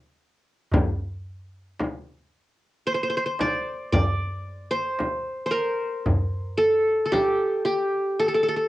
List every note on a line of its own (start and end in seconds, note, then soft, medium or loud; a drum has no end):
0.72 darbuka dum medium
0.72 frame drum medium
1.79 darbuka tek medium
1.79 frame drum medium
2.86 2.94 C5 medium
2.86 darbuka ka soft
2.94 3.03 C5 medium
3.03 3.09 C5 medium
3.10 3.16 C5 medium
3.17 3.25 C5 medium
3.26 4.31 C5 medium
3.39 3.92 D5 medium
3.39 darbuka tek medium
3.39 frame drum medium
3.92 4.91 D5 medium
3.92 darbuka dum medium
3.92 frame drum medium
4.47 darbuka ka soft
4.71 5.46 C5 medium
4.99 darbuka tek medium
4.99 frame drum medium
5.46 6.52 C5 medium
5.51 6.64 A#4 medium
6.06 darbuka dum medium
6.06 frame drum medium
6.58 7.05 A4 medium
7.06 8.19 A4 medium
7.12 7.64 G4 medium
7.12 darbuka tek medium
7.12 frame drum medium
7.65 8.68 G4 medium
8.20 8.28 A4 medium
8.20 darbuka ka soft
8.28 8.34 A4 medium
8.34 8.43 A4 medium
8.43 8.48 A4 medium
8.48 8.56 A4 medium
8.56 8.68 A4 medium